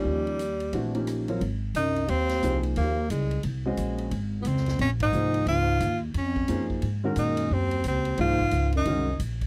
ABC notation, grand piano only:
X:1
M:4/4
L:1/8
Q:"Swing" 1/4=177
K:Eblyd
V:1 name="Grand piano"
[F,B,_DEG]2 z2 [=E,A,C=D_G] [F,B,_D_E=G]2 [_G,CFB_d] | [K:Abmix] z6 [F,B,EAc]2- | [F,B,EAc] z4 [A,DGce]3 | z6 [F,B,EAc]2- |
[F,B,EAc] z4 z [F,B,EAc]2 | z [E,A,DGB]3 z4 | [F,B,EAc] z3 [E,A,DGB] z3 |]